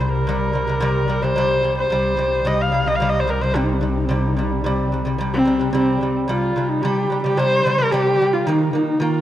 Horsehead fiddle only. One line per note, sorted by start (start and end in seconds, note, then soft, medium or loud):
0.00 0.11 C5 medium
0.12 1.24 A#4 medium
1.23 1.77 C5 loud
1.78 2.48 C5 medium
2.47 2.62 D#5 medium
2.61 2.89 F5 medium
2.88 2.97 D#5 medium
2.96 3.11 F5 medium
3.09 3.21 D#5 medium
3.20 3.31 C5 medium
3.30 3.43 A#4 medium
3.41 3.58 C5 medium
3.57 3.65 C4 medium
3.63 3.74 D#4 medium
3.72 3.83 C4 medium
3.81 3.90 D#4 medium
3.88 3.99 C4 medium
3.97 4.06 D#4 medium
4.05 4.14 C4 medium
4.12 4.21 D#4 medium
4.19 4.28 C4 medium
4.27 4.37 D#4 medium
4.35 4.44 C4 medium
4.42 4.53 D#4 medium
4.52 4.61 C4 soft
4.60 4.69 D#4 medium
4.68 5.08 C4 medium
5.34 5.72 C4 loud
5.74 6.15 C4 medium
6.29 6.70 F4 medium
6.69 6.83 D#4 medium
6.82 7.22 G4 medium
7.23 7.40 G4 loud
7.38 7.80 C5 loud
7.79 7.93 A#4 loud
7.92 8.35 G4 loud
8.33 8.48 F4 medium
8.47 8.74 D#4 medium
8.74 9.02 D#4 medium
9.01 9.21 F4 medium